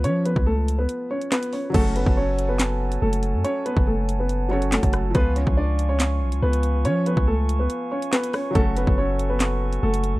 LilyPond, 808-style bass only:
\new Staff \with { instrumentName = "808-style bass" } { \clef bass \time 4/4 \key fis \minor \tempo 4 = 141 eis8. cis,4~ cis,16 r2 | fis,,8. fis,,2~ fis,,16 fis,,8. fis,16 | r8. fis,,2~ fis,,8 fis,,8. | cis,8. cis,4.~ cis,16 b,,16 cis,16 cis,4 |
eis8. cis,4~ cis,16 r2 | fis,,8. fis,,2~ fis,,16 fis,,8. fis,16 | }